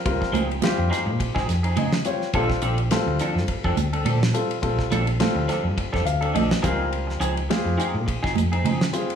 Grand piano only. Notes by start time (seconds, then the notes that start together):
0.05 G3 C4 F4 A#4
0.63 G3 C4 F4 G4
1.78 D#5
2.05 G3 C4 F4 C#5 G5
2.34 G3 C4 F4 A4
2.91 G3 C4 F4 A4
4.34 G3 C4 F4 A4
4.62 G3 C4 F4 A4
5.20 G3 C4 F4 A4
6.05 F5
6.35 D#5
6.63 G3 C4 F4 A#4
7.50 C4 F4 G4 G#4
8.93 G3 C4 F4 G#4